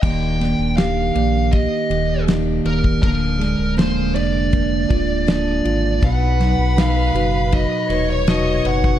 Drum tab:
CC |x---------------|----------------|----------------|
RD |--x-x-x-x-x-x-x-|x-x-x-x-x-x-x-x-|x-x-x-x-x-x-x-x-|
SD |--o-o-------o---|--o-o-------o---|--o-o-------o---|
BD |o-------o------o|o-------o-o-----|o-------o------o|